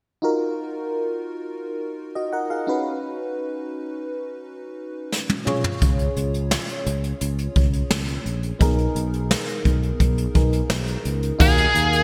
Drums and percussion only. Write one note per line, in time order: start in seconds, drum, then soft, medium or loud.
5.12 snare soft
5.30 high tom medium
5.47 mid tom medium
5.64 floor tom medium
5.82 kick medium
5.82 closed hi-hat medium
5.99 closed hi-hat soft
6.17 closed hi-hat medium
6.34 closed hi-hat soft
6.51 snare loud
6.69 closed hi-hat soft
6.86 closed hi-hat medium
7.04 closed hi-hat soft
7.21 closed hi-hat medium
7.39 closed hi-hat soft
7.56 kick medium
7.56 closed hi-hat medium
7.73 closed hi-hat soft
7.91 snare loud
8.08 closed hi-hat soft
8.26 closed hi-hat medium
8.43 closed hi-hat soft
8.61 kick medium
8.61 closed hi-hat medium
8.78 closed hi-hat soft
8.96 closed hi-hat medium
9.14 closed hi-hat soft
9.31 snare loud
9.48 closed hi-hat soft
9.65 kick medium
9.65 closed hi-hat medium
9.83 closed hi-hat soft
10.00 kick medium
10.00 closed hi-hat medium
10.18 closed hi-hat medium
10.35 kick medium
10.35 closed hi-hat medium
10.53 closed hi-hat soft
10.70 snare medium
10.88 closed hi-hat soft
11.05 closed hi-hat medium
11.23 closed hi-hat soft
11.40 kick loud
11.40 crash loud
11.58 closed hi-hat medium
11.75 closed hi-hat medium
11.93 closed hi-hat medium